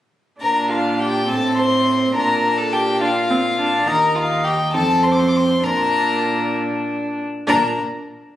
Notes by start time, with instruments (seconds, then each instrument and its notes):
0.41 cello A#2, viola D4, violin A#4 A#5
0.70 violin F4 F5
1.00 violin G4 G5
1.29 cello A2, viola C4, violin A4 A5
1.57 violin C5 C6
2.15 cello A#2, viola D4, violin A#4 A#5
2.58 violin A4 A5
2.72 violin G4 G5
3.01 viola D4, violin F4 F5
3.30 viola C4
3.59 viola D4
3.87 cello D#2, viola D#4, violin A#4 A#5
4.15 violin F4 F5
4.44 violin G4 G5
4.73 cello F2, viola C4, violin A4 A5
5.03 violin C5 C6
5.12 violin D6
5.19 violin C6
5.28 violin D6
5.36 violin C6
5.64 cello A#2, viola D4, violin A#4 A#5
7.47 cello A#2, viola D4, violin A#4 A#5